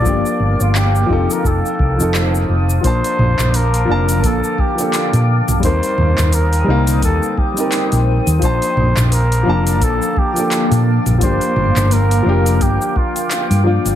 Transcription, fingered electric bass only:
X:1
M:4/4
L:1/16
Q:"Swing 16ths" 1/4=86
K:Bb
V:1 name="Fingered electric bass" clef=bass
z2 G,,, G,,,3 F,,, z F,,, z C,, F,,,3 F,,,2 | B,,, z B,,, B,,,3 F,,,2 B,,, z4 B,,2 B,,, | E,, z E,, E,,3 C,,2 E,, z4 B,,,2 E,, | B,,, z B,,, B,,,3 F,,,2 B,,, z4 B,,2 B,,, |
G,,, z G,,, G,,,3 F,,,2 G,,, z4 G,,2 G,,, |]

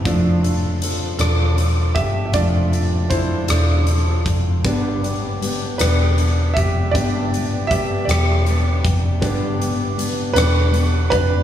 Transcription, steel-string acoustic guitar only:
X:1
M:6/8
L:1/8
Q:3/8=53
K:Gmix
V:1 name="Steel-string acoustic guitar"
[F,DFA] [DFA] [F,DFA] [F,DFA] [F,DFA] [DFA] | [F,DFA] [DFA] [F,DFA] [F,DFA] [F,DFA] [DFA] | [G,,D,G,B,DG] [G,B,DG] [G,B,DG] [G,,D,G,B,DG] [G,B,DG] [G,B,DG] | [G,,D,G,B,DG] [G,B,DG] [G,B,DG] [G,,D,G,B,DG] [G,B,DG] [G,B,DG] |
[G,,D,G,B,DG] [G,B,DG] [G,B,DG] [G,,D,G,B,DG] [G,B,DG] [G,B,DG] |]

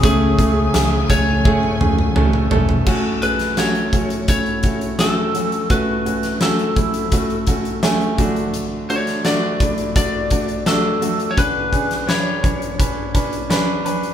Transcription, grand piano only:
X:1
M:4/4
L:1/8
Q:1/4=85
K:F#m
V:1 name="Grand piano"
[A,CG] [A,CG] [A,CG] [A,CG] [A,CG] [A,CG] [A,CA] [A,CA] | [A,CF] [A,CG] [A,CF] [A,CF] [A,CE] [A,CF] [A,CF] [A,CF] | [A,CF] [A,CF] [A,CF] [A,CE] [A,CF] [A,CF] [A,Cg] [A,DF]- | [A,DF] [A,DF] [A,DF] [A,DE] [A,DF] [A,DF] [A,DF] [A,DF] |
[CDB] [CDG] [DBc] [CDB] [CDB] [CDB] [CDB] [CDB] |]
V:2 name="Grand piano" clef=bass
C,3 z4 z | z8 | z6 z D,- | D,2 z6 |
D,3 z4 z |]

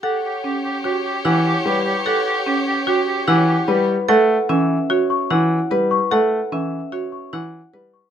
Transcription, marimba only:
X:1
M:5/4
L:1/8
Q:1/4=148
K:Amix
V:1 name="Marimba"
A z C z F z E z3 | A z C z F z E z3 | A z C z F z E z B z | A z C z F z E z B z |]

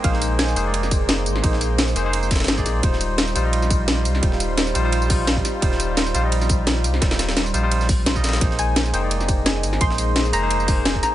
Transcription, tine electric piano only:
X:1
M:4/4
L:1/16
Q:"Swing 16ths" 1/4=172
K:Eb
V:1 name="Tine electric piano"
[B,EAc]6 [B,EAc] [B,EAd]8- [B,EAd] | [B,EAc]6 [B,EAc] [B,EAc]3 z2 [B,EAc] [B,EAd]3 | [G,EFc]6 [G,EFc] [G,EFe]8- [G,EFe] | [G,EFc]6 [G,EFc] [G,EFc]3 [G,EFc]6 |
[G,EFc]6 [G,EFc] [G,EFe]8- [G,EFe] | [G,EFc]6 [G,EFc] [G,EFc]3 z2 [G,EFc] [G,EFe]3 | [B,EAc]6 [B,EAc] [B,EAd]8- [B,EAd] | [B,EAc]6 [B,EAc] [B,EAc]3 [B,EAc]6 |]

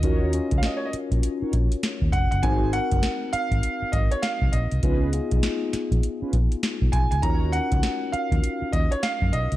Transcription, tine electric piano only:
X:1
M:4/4
L:1/8
Q:"Swing 16ths" 1/4=100
K:Ebm
V:1 name="Tine electric piano"
[DFGB] [DFGd]4 z3 | [=CEGB] [CEGB]4 z3 | [CEFA] [CEFA]4 z3 | [DFGB] [DEGB]4 z3 |]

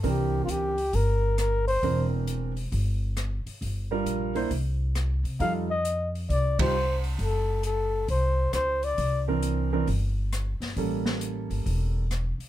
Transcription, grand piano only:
X:1
M:4/4
L:1/8
Q:"Swing" 1/4=134
K:Cmix
V:1 name="Grand piano"
[E,CDB]3 z4 z | [E,CDB]3 z4 z | z [G,DFB]2 [B,DEc] z4 | [G,_EFA] z4 [G,EFG] z2 |
z8 | z [E,CDB]2 [E,CDB] z4 | [G,B,^CA]4- [G,B,CA] z3 |]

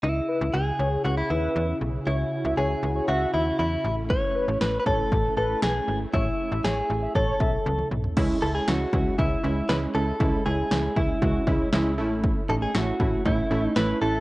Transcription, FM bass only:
X:1
M:4/4
L:1/16
Q:1/4=118
K:C#m
V:1 name="FM bass" clef=bass
C,,2 z C,, C,,2 C,,2 C,,2 D,,2 E,,2 B,,,2 | C,,2 z C,, C,,2 C,,2 C,,2 D,,2 E,,2 A,,,2- | A,,,2 z A,,, A,,,2 A,,,2 A,,,2 A,,,2 B,,,2 G,,,2 | A,,,2 z A,,, A,,,2 A,,,2 A,,,2 B,,,2 C,,2 B,,,2 |
C,,2 C,,2 C,,2 C,,2 C,,2 C,,2 C,,2 C,,2 | C,,2 C,,2 C,,2 C,,2 C,,2 C,,2 C,,2 A,,,2- | A,,,2 A,,,2 A,,,2 A,,,2 A,,,2 A,,,2 A,,,2 A,,,2 |]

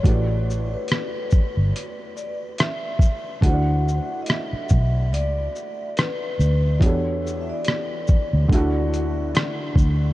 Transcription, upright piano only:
X:1
M:4/4
L:1/8
Q:"Swing 16ths" 1/4=71
K:D
V:1 name="Upright piano"
[A,EFGBd]8 | [A,DEF=cd]8 | [E,B,DFGA]4 [D,A,DEF]4 |]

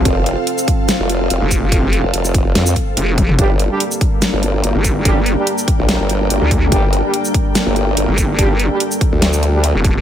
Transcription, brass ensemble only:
X:1
M:4/4
L:1/16
Q:"Swing 16ths" 1/4=144
K:Gm
V:1 name="Brass ensemble"
z16 | z16 | [G,DG] z2 [G,DG] z12 | [G,DG] z2 [G,DG] z12 |
[G,DG] z2 [G,DG] z12 | [G,DG] z2 [G,DG] z6 z [G,DG] z4 |]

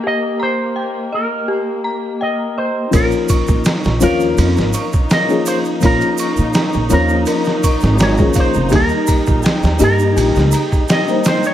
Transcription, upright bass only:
X:1
M:4/4
L:1/16
Q:"Swing 16ths" 1/4=83
K:Bbdor
V:1 name="Upright bass" clef=bass
z16 | B,,, z2 B,, z B,,, E,,2 F,, A,,, z6 | B,,, z2 B,, z B,,, E,,2 z3 A,,,2 E,, z F,,, | E,, z2 B,,, z E,, G,,2 B,,, D,, z6 |]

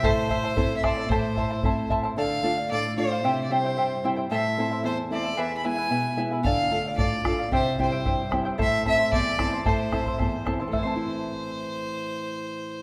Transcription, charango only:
X:1
M:2/4
L:1/16
Q:1/4=112
K:Am
V:1 name="Charango"
[EAcea]2 [Ecea] [Eca] [Ecea]2 [Ecea] [Eca] | [EAcea]2 [Ecea] [Eca] [Ecea]2 [Ecea] [Eca] | [Adf]2 [Adf] [df] [Adf]2 [Adf] [df] | [EGceg]2 [Eceg] [Ecg] [Eceg]2 [Eceg] [Ecg] |
[EAcea]2 [Ecea] [Eca] [Ecea]2 [Ecea] [Eca] | [E^GBe^g]2 [EBeg] [EBg] [EBeg]2 [EBeg] [EBg] | [Adf]2 [Adf] [df] [Adf]2 [Adf] [df] | [EGceg]2 [Eceg] [Ecg] [Eceg]2 [Eceg] [Ecg] |
[EAcea]2 [Ecea] [Eca] [Ecea]2 [Ecea] [Eca] | [EAcea]2 [Ecea] [Eca] [Ecea]2 [Ecea] [Eca] | [EAcea]8- | [EAcea]8 |]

